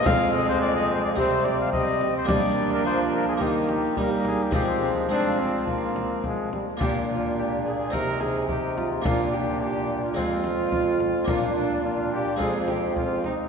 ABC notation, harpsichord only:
X:1
M:4/4
L:1/8
Q:1/4=107
K:Fdor
V:1 name="Harpsichord"
[A,CF]4 [CG]4 | [B,DG]4 [B,EG]4 | [A,CF]2 [A,CA]6 | [B,DF]4 [CE]4 |
[B,DF]4 [A,CF]4 | [B,DF]4 [A,CF]4 |]
V:2 name="Harpsichord" clef=bass
F,,4 C,3 z | G,2 F,2 E,2 G,2 | F,6- F, z | B,,4 C,4 |
B,,4 F,,4 | B,,4 F,,3 z |]